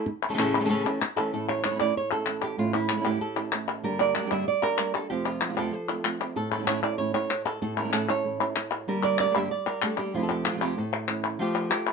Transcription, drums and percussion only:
0.39 clap medium
1.02 clap medium
1.64 clap medium
2.26 clap medium
2.42 clap soft
2.89 clap medium
3.52 clap medium
4.15 clap medium
4.78 clap medium
5.41 clap medium
6.05 clap medium
6.68 clap medium
7.31 clap medium
7.93 clap medium
8.56 clap medium
9.18 clap medium
9.82 clap medium
10.45 clap medium
11.08 clap medium
11.71 clap medium

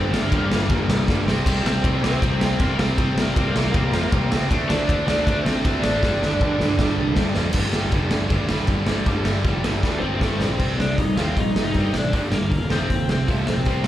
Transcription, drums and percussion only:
0.14 snare loud
0.32 kick loud
0.32 ride medium
0.52 snare loud
0.69 kick loud
0.69 ride medium
0.90 snare loud
1.08 kick loud
1.08 snare medium
1.28 snare loud
1.46 kick loud
1.46 ride medium
1.46 crash loud
1.66 snare loud
1.84 kick loud
1.84 ride medium
2.04 snare loud
2.22 kick loud
2.22 ride medium
2.41 snare loud
2.60 kick loud
2.60 ride medium
2.79 snare loud
2.98 kick loud
2.98 ride medium
3.18 snare loud
3.36 kick loud
3.36 ride medium
3.56 snare loud
3.74 kick loud
3.74 ride medium
3.94 snare loud
4.12 kick loud
4.12 ride medium
4.32 snare loud
4.51 kick loud
4.51 ride medium
4.70 snare loud
4.89 kick loud
4.89 ride medium
5.08 snare loud
5.27 kick loud
5.27 ride medium
5.46 snare loud
5.65 kick loud
5.65 ride medium
5.84 snare loud
6.03 kick loud
6.03 snare medium
6.23 snare medium
6.41 kick loud
6.60 snare medium
6.79 kick loud
6.79 snare medium
7.16 kick loud
7.16 snare loud
7.35 snare loud
7.53 kick loud
7.53 crash loud
7.53 crash medium
7.73 snare loud
7.92 kick loud
7.92 crash medium
8.11 snare loud
8.30 kick loud
8.30 crash medium
8.49 snare loud
8.67 kick loud
8.67 crash medium
8.87 snare loud
9.06 kick loud
9.06 crash medium
9.25 snare loud
9.44 kick loud
9.44 crash medium
9.64 snare loud
9.83 kick loud
9.83 snare medium
10.21 kick loud
10.21 snare medium
10.41 snare medium
10.60 kick loud
10.60 crash loud
10.80 snare loud
10.98 kick loud
10.98 open hi-hat medium
11.18 snare medium
11.37 kick loud
11.37 open hi-hat medium
11.56 snare loud
11.74 kick medium
11.74 open hi-hat soft
11.94 snare loud
12.13 kick loud
12.13 open hi-hat medium
12.32 snare loud
12.52 kick loud
12.52 open hi-hat medium
12.70 snare loud
12.90 kick medium
12.90 open hi-hat medium
13.09 snare loud
13.28 kick loud
13.28 open hi-hat medium
13.47 snare loud
13.65 kick loud
13.65 open hi-hat medium
13.84 snare loud

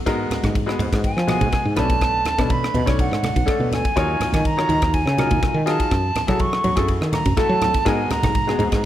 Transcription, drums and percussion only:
0.07 kick medium
0.07 cross-stick medium
0.07 ride medium
0.31 cross-stick medium
0.31 ride medium
0.31 low conga medium
0.43 kick medium
0.43 cross-stick medium
0.43 ride medium
0.43 high conga medium
0.55 kick loud
0.55 ride medium
0.69 cross-stick medium
0.79 ride medium
0.79 low conga medium
0.93 kick medium
0.93 cross-stick medium
0.93 ride medium
1.04 kick medium
1.04 ride medium
1.18 cross-stick medium
1.28 cross-stick medium
1.28 ride medium
1.28 high conga medium
1.41 kick medium
1.41 ride medium
1.41 high conga medium
1.52 kick loud
1.52 cross-stick medium
1.52 ride medium
1.76 cross-stick medium
1.76 ride medium
1.76 low conga medium
1.90 kick medium
1.90 ride medium
2.01 kick medium
2.01 cross-stick medium
2.01 ride medium
2.25 cross-stick medium
2.25 ride medium
2.25 low conga medium
2.38 kick medium
2.38 cross-stick medium
2.38 ride medium
2.38 high conga medium
2.50 kick loud
2.50 ride medium
2.64 cross-stick medium
2.74 ride soft
2.74 high conga medium
2.74 low conga medium
2.87 kick medium
2.87 cross-stick medium
2.87 ride medium
2.99 kick medium
2.99 ride medium
3.13 cross-stick medium
3.23 cross-stick medium
3.23 ride medium
3.23 high conga medium
3.36 kick medium
3.36 ride medium
3.36 high conga medium
3.48 kick loud
3.48 cross-stick medium
3.48 ride medium
3.60 high conga medium
3.72 cross-stick medium
3.72 ride medium
3.72 low conga medium
3.85 kick medium
3.85 ride medium
3.97 kick medium
3.97 cross-stick medium
3.97 ride medium
4.20 cross-stick medium
4.20 ride medium
4.20 low conga medium
4.33 kick medium
4.33 cross-stick medium
4.33 ride medium
4.33 high conga medium
4.45 kick loud
4.45 ride medium
4.59 cross-stick medium
4.69 ride medium
4.69 low conga medium
4.82 kick medium
4.82 cross-stick medium
4.82 ride medium
4.94 kick medium
4.94 ride medium
5.07 cross-stick medium
5.18 cross-stick medium
5.18 ride medium
5.18 high conga medium
5.31 kick medium
5.31 ride medium
5.31 high conga medium
5.42 kick loud
5.42 cross-stick medium
5.42 ride medium
5.67 cross-stick medium
5.67 ride medium
5.80 kick medium
5.80 ride medium
5.91 kick medium
5.91 cross-stick medium
5.91 ride medium
6.15 cross-stick medium
6.15 ride medium
6.15 low conga medium
6.28 kick medium
6.28 cross-stick medium
6.28 ride medium
6.28 high conga medium
6.39 kick loud
6.39 ride medium
6.53 cross-stick medium
6.64 ride medium
6.64 low conga medium
6.77 kick medium
6.77 cross-stick medium
6.77 ride medium
6.88 kick medium
6.88 ride medium
7.02 cross-stick medium
7.13 cross-stick medium
7.13 ride medium
7.13 high conga medium
7.25 kick medium
7.25 ride medium
7.25 high conga medium
7.37 kick loud
7.37 cross-stick medium
7.37 ride medium
7.61 cross-stick medium
7.61 ride medium
7.61 low conga medium
7.74 kick medium
7.74 ride medium
7.86 kick medium
7.86 cross-stick medium
7.86 ride medium
8.10 cross-stick medium
8.10 ride medium
8.10 low conga medium
8.23 kick medium
8.23 cross-stick medium
8.23 ride medium
8.23 high conga medium
8.35 kick loud
8.35 ride medium
8.49 cross-stick medium
8.60 ride medium
8.60 low conga medium
8.72 kick medium
8.72 cross-stick medium
8.72 ride medium

